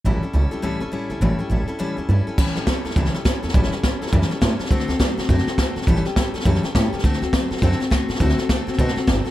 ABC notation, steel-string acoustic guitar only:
X:1
M:4/4
L:1/8
Q:"Swing" 1/4=206
K:Amix
V:1 name="Steel-string acoustic guitar"
[A,,E,G,CEA] [G,CEA] [G,CEA] [G,CEA] [A,,E,G,CEA] [G,CEA] [G,CEA] [G,CEA] | [A,,E,G,CEA] [G,CEA] [G,CEA] [G,CEA] [A,,E,G,CEA] [G,CEA] [G,CEA] [G,CEA] | [A,,E,G,CEA] [G,CEA] [G,CEA] [G,CEA] [A,,E,G,CEA] [G,CEA] [G,CEA] [G,CEA] | [A,,E,G,CEA] [G,CEA] [G,CEA] [G,CEA] [A,,E,G,CEA] [G,CEA] [G,CEA] [G,CEA] |
[D,A,=CFA] [CFA] [A,CFA] [CFA] [D,A,CFA] [CFA] [A,CFA] [CFA] | [A,,E,G,CGA] [G,CGA] [G,CGA] [G,CGA] [A,,E,G,CGA] [G,CGA] [G,CGA] [G,CGA] | [D,A,=CFA] [CFA] [A,CFA] [CFA] [D,A,CFA] [CFA] [A,CFA] [CFA] | [D,A,=CFA] [CFA] [A,CFA] [CFA] [D,A,CFA] [CFA] [A,CFA] [CFA] |]